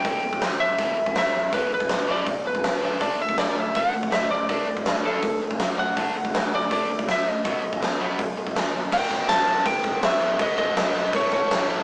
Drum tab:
CC |----------------|----------------|----------------|----------------|
HH |o---o---o---o---|o---o---o---o---|o---o---o---o---|o---o---o---o---|
SD |----o-------o---|----o-------o---|----o-------o---|----o-------o---|
BD |o--o----o--o----|o--o----o--o----|o--o----o--o----|o--o----o--o----|

CC |----------------|----------------|x-x-x-x-x-x-x-x-|x-x-x-x-x-x-x-x-|
HH |o---o---o---o---|o---o---o---o---|----------------|----------------|
SD |----o-------o---|----o-------o---|----o-------o---|----o-------o---|
BD |o--o----o--o----|o--o----o--o----|o-o-----o-o-----|o-o-----o-o-----|